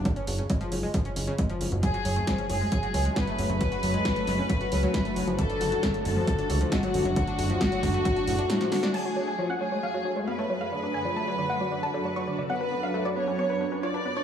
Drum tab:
CC |----------------|----------------|----------------|----------------|
HH |xxoxxxo-xxoxxxox|xxo-xxo-xxoxxxox|xxoxxxo-xxoxxxox|xxoxxxo-xxoxxxox|
SD |----------------|----o-------o---|----o-o-----o---|----o-------o---|
BD |o---o---o---o---|o---o---o---o---|o---o---o---o---|o---o---o---o---|

CC |----------------|x---------------|----------------|----------------|
HH |xxoxxxoxxxoxxxox|----------------|----------------|----------------|
SD |----o-o-----oooo|----------------|----------------|----------------|
BD |o---o-o-o-------|----------------|----------------|----------------|